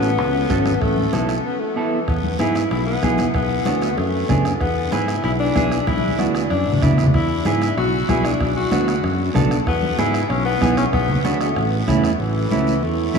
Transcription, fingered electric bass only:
0.00 0.18 A1 medium
0.18 0.44 C#2 medium
0.50 0.75 G#1 medium
0.82 1.07 A1 medium
1.13 1.38 B1 medium
2.08 2.33 E2 medium
2.39 2.65 G#2 medium
2.71 2.96 B1 medium
3.03 3.28 B1 medium
3.35 3.60 B1 medium
3.66 3.91 D2 medium
3.97 4.23 F#2 medium
4.29 4.55 F#2 medium
4.61 4.86 E2 medium
4.92 5.18 G#2 medium
5.24 5.49 B1 medium
5.56 5.81 B1 medium
5.88 6.13 B1 medium
6.19 6.44 D2 medium
6.50 6.63 F#2 medium
6.66 6.80 G#1 medium
6.82 6.97 F#1 medium
6.98 7.12 E1 medium
7.14 7.39 E2 medium
7.45 7.71 G#2 medium
7.77 8.02 B1 medium
8.09 8.34 B1 medium
8.40 8.66 B1 medium
8.72 8.97 D2 medium
9.03 9.29 F#2 medium
9.35 9.60 B1 loud
9.67 9.92 E2 medium
9.98 10.24 G#2 medium
10.30 10.55 B1 medium
10.62 10.87 B1 medium
10.93 11.19 B1 medium
11.25 11.50 D2 medium
11.56 11.82 A1 medium
11.88 12.13 E2 medium
12.19 12.45 A1 medium
12.51 12.83 C#2 medium
12.83 13.08 E2 medium
13.14 13.19 A1 medium

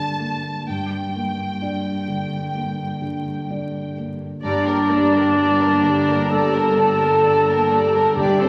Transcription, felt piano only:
0.00 0.69 D3 soft
0.00 0.20 A#3 soft
0.00 0.14 D4 soft
0.00 0.14 D5 soft
0.20 0.67 A#3 soft
0.68 2.51 G2 soft
1.16 1.90 A#3 soft
1.62 2.04 D4 soft
1.62 2.04 D5 soft
2.08 2.83 D3 soft
2.55 3.30 A#3 soft
3.02 3.77 D3 soft
3.50 3.92 D4 soft
3.50 3.93 D5 soft
3.97 4.43 A#3 soft
4.44 6.28 G2 soft
4.89 5.64 A#3 soft
5.34 5.79 D4 soft
5.34 5.79 D5 soft
5.83 6.59 D3 soft
6.30 7.05 A#3 soft
6.77 7.51 D3 soft
7.24 7.66 D4 soft
7.24 7.66 D5 soft
7.71 8.17 A#3 soft
8.17 8.49 G2 soft

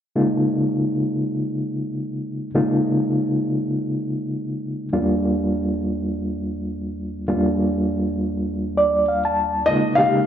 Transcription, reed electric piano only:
0.16 2.50 C#3 medium
0.16 2.50 G#3 medium
0.16 2.50 A#3 soft
0.16 2.50 D#4 medium
0.16 2.50 F4 medium
2.55 4.88 C#3 medium
2.55 4.88 G#3 medium
2.55 4.88 A#3 medium
2.55 4.88 D#4 medium
2.55 4.88 F4 medium
4.93 7.26 D#2 medium
4.93 7.26 G3 soft
4.93 7.26 A#3 soft
4.93 7.26 D4 medium
4.93 7.26 F4 medium
7.28 9.62 D#2 medium
7.28 9.62 G3 medium
7.28 9.62 A#3 soft
7.28 9.62 D4 medium
7.28 9.62 F4 medium
8.77 9.05 D5 medium
9.08 9.23 F5 soft
9.25 9.64 A5 medium
9.68 9.92 C#3 medium
9.68 9.92 G#3 medium
9.68 9.92 A#3 medium
9.68 9.92 D#4 soft
9.68 9.92 F4 medium
9.98 10.27 C#3 medium
9.98 10.27 G#3 medium
9.98 10.27 A#3 medium
9.98 10.27 D#4 medium
9.98 10.27 G4 medium

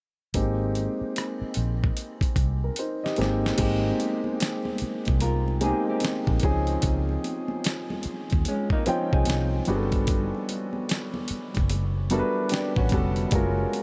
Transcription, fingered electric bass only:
0.35 0.87 G#1 medium
1.01 muted fingered electric bass stroke soft
1.41 muted fingered electric bass stroke soft
1.57 1.89 A#1 medium
2.22 muted fingered electric bass stroke soft
2.36 2.69 C2 medium
3.19 3.51 G#1 medium
3.59 3.91 G#1 loud
4.82 muted fingered electric bass stroke soft
5.08 5.71 C2 medium
6.28 6.40 A#1 medium
6.44 6.76 C#2 medium
6.84 7.16 C#2 medium
8.06 muted fingered electric bass stroke soft
8.33 8.44 D#2 medium
8.87 muted fingered electric bass stroke soft
9.13 9.25 C2 medium
9.28 9.59 C2 medium
9.68 10.32 G1 medium
11.30 muted fingered electric bass stroke soft
11.57 12.21 F#1 medium
12.77 12.89 A1 medium
12.93 13.24 F1 medium
13.33 13.65 F#1 loud

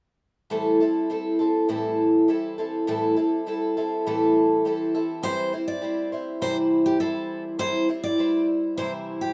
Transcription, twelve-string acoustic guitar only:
0.50 0.80 A2 medium
0.50 0.80 E3 medium
0.50 0.81 G3 medium
0.50 0.81 C4 medium
0.50 0.80 E4 medium
0.50 0.79 A4 medium
0.80 1.08 G3 soft
0.80 1.09 C4 soft
0.80 1.10 E4 soft
0.80 1.10 A4 soft
1.10 1.40 G3 soft
1.10 1.40 C4 medium
1.10 1.39 E4 medium
1.10 1.38 A4 medium
1.39 1.68 G3 soft
1.39 1.68 C4 soft
1.39 1.69 E4 soft
1.39 1.69 A4 soft
1.69 2.28 A2 medium
1.69 2.87 E3 medium
1.69 2.28 G3 medium
1.69 2.28 C4 medium
1.69 2.29 E4 medium
1.69 2.29 A4 medium
2.28 2.58 G3 medium
2.28 2.58 C4 medium
2.28 2.58 E4 medium
2.28 2.57 A4 medium
2.58 2.87 G3 soft
2.58 2.87 C4 soft
2.58 2.87 E4 soft
2.58 2.88 A4 soft
2.87 3.17 A2 medium
2.87 3.17 E3 medium
2.87 3.17 G3 medium
2.87 3.16 C4 medium
2.87 3.16 E4 medium
2.87 3.15 A4 medium
3.16 3.45 G3 soft
3.16 3.46 C4 soft
3.16 3.47 E4 soft
3.16 3.46 A4 soft
3.46 3.76 G3 medium
3.46 3.76 C4 medium
3.46 3.76 E4 medium
3.46 3.76 A4 medium
3.77 4.06 G3 soft
3.77 4.06 C4 soft
3.77 4.06 E4 soft
3.77 4.06 A4 soft
4.06 4.65 A2 medium
4.06 5.23 E3 medium
4.06 4.65 G3 medium
4.06 4.65 C4 medium
4.06 4.66 E4 medium
4.06 4.66 A4 medium
4.65 4.94 G3 medium
4.65 4.95 C4 medium
4.65 4.94 E4 medium
4.65 4.93 A4 medium
4.95 5.23 G3 soft
4.95 5.23 C4 soft
4.95 5.23 E4 soft
4.95 5.24 A4 soft
5.23 5.53 C3 medium
5.23 5.53 E3 medium
5.23 5.53 G3 medium
5.23 5.53 C4 medium
5.23 5.52 E4 medium
5.23 5.51 C5 medium
5.53 5.81 G3 soft
5.53 5.82 C4 soft
5.53 5.83 E4 soft
5.53 5.82 C5 medium
5.82 6.12 G3 medium
5.82 6.12 C4 medium
5.82 6.12 E4 medium
5.82 6.11 C5 medium
6.12 6.40 G3 soft
6.12 6.41 C4 soft
6.12 6.41 E4 soft
6.12 6.41 C5 soft
6.42 7.00 C3 medium
6.42 7.59 E3 medium
6.42 7.00 G3 medium
6.42 7.00 C4 medium
6.42 7.01 E4 medium
6.42 7.01 C5 medium
7.00 7.59 G3 medium
7.00 7.59 C4 soft
7.00 7.60 E4 medium
7.00 7.60 C5 medium
7.59 7.89 C3 medium
7.59 7.89 E3 medium
7.59 7.89 G3 medium
7.59 7.89 C4 medium
7.59 7.88 E4 medium
7.59 7.87 C5 medium
7.88 8.17 G3 soft
7.88 8.18 C4 soft
7.88 8.18 E4 soft
7.88 8.18 C5 soft
8.18 8.78 G3 medium
8.18 8.78 C4 medium
8.18 8.78 E4 medium
8.18 8.78 C5 medium
8.77 9.33 C3 medium
8.77 9.33 E3 medium
8.77 9.33 G3 medium
8.77 9.33 C4 medium
8.77 9.33 E4 medium
8.77 9.33 C5 medium

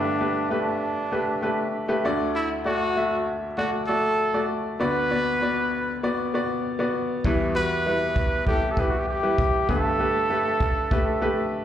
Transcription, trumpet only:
0.00 0.52 D4 medium
0.52 1.70 D4 medium
2.35 2.49 E4 medium
2.66 3.23 F#4 loud
3.57 3.71 F#4 medium
3.87 4.45 A4 medium
4.81 5.99 B4 medium
7.55 8.43 B4 medium
8.47 8.73 G4 medium
8.71 8.82 A4 medium
8.80 8.91 G4 medium
8.90 9.00 F#4 medium
8.99 9.08 G4 medium
9.08 9.65 G4 medium
9.70 11.49 A4 medium

